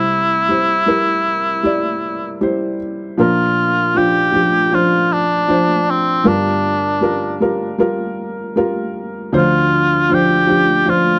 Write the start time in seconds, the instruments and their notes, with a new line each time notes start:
Already playing: felt piano C2 C3 G3 E4 C5, cor anglais E4
0.48 felt piano G3 E4 C5
0.86 felt piano G3 E4 A#4
1.63 felt piano G3 E4 D5
2.41 felt piano G3 E4 C5
3.18 felt piano A#1 A#2 F3 D4 A#4, cor anglais F4
3.95 felt piano F3 D4 F4, cor anglais G4
4.32 felt piano F3 D4 G4
4.72 felt piano F3 D4 C5, cor anglais F4
5.13 cor anglais D4
5.48 felt piano F3 D4 C5
5.90 cor anglais C4
6.24 felt piano G1 G2 G3 F4 A#4, cor anglais D4
7.01 felt piano G3 F4 A#4
7.40 felt piano G3 F4 A#4
7.78 felt piano G3 F4 A#4
8.56 felt piano G3 F4 A#4
9.33 felt piano D2 D3 F3 D4 C5
9.37 cor anglais F4
10.09 felt piano F3 D4 C5
10.14 cor anglais G4
10.47 felt piano F3 D4 G4
10.86 felt piano F3 D4 C5, cor anglais F4